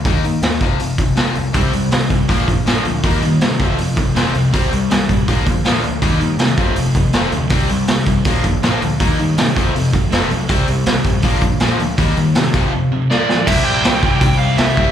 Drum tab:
CC |--------|--------|--------|--------|
HH |oooooooo|oooooooo|oooooooo|oooooooo|
SD |--o---o-|--o---o-|--o---o-|--o---o-|
BD |o--o-o--|o--ooo--|o--o-o--|o--ooo--|

CC |--------|--------|--------|--------|
HH |oooooooo|oooooooo|oooooooo|oooooooo|
SD |--o---o-|--o---o-|--o---o-|--o---o-|
BD |o--o-o--|o--ooo--|o--o-o--|o--ooo--|

CC |--------|x-------|
HH |oooo----|--o-o-o-|
SD |--o---oo|--o---o-|
BD |o--o----|o--oo--o|